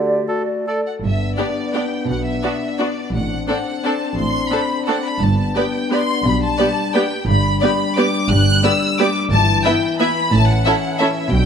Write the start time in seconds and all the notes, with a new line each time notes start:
Already playing: D3 A3 F#4 G4 D5
0.28 F#4 A4
0.67 A4 D5
0.87 F#5
1.03 G1 G2 B3 D4 E5
1.38 B3 D4 G4 D5
1.74 B3 D4 G4 D5 G5
2.08 B1 B2 F#5
2.26 E5
2.43 B3 D4 F#4 D5
2.79 B3 D4 F#4 D5
3.13 A1 A2 C4 D4 F#5
3.49 C4 D4 A4 D5 F#5
3.84 C4 D4 A4 D5 A5
4.17 A1 A2 C6
4.52 C4 D4 A4 D5 B5
4.87 C4 D4 A4 D5 F#5
5.05 B5
5.22 G1 G2 B3 D4 A5
5.56 B3 G4 B4 D5 G5
5.92 B3 G4 B4 D5 C6
6.25 B1 B2 G3 B5
6.43 A5
6.59 B3 G4 B4 D5
6.94 B3 G4 B4 D5 G5
7.28 G1 G2 G3 D4 B5
7.61 B3 G4 B4 D5 B5
7.96 B3 G4 B4 D5 D6
8.28 G1 G2 F#6
8.64 B3 G4 B4 D5 E6
8.99 B3 G4 B4 D5 D6
9.32 G1 G2 E3 E4 A5
9.65 B3 E4 B4 E5 G5
9.99 B3 E4 B4 E5 B5
10.32 A1 A2 C#4 A5
10.47 F#5
10.66 C#4 E4 A4 E5
10.99 C#4 E4 A4 E5
11.31 B1 B2 F#3 D4 G5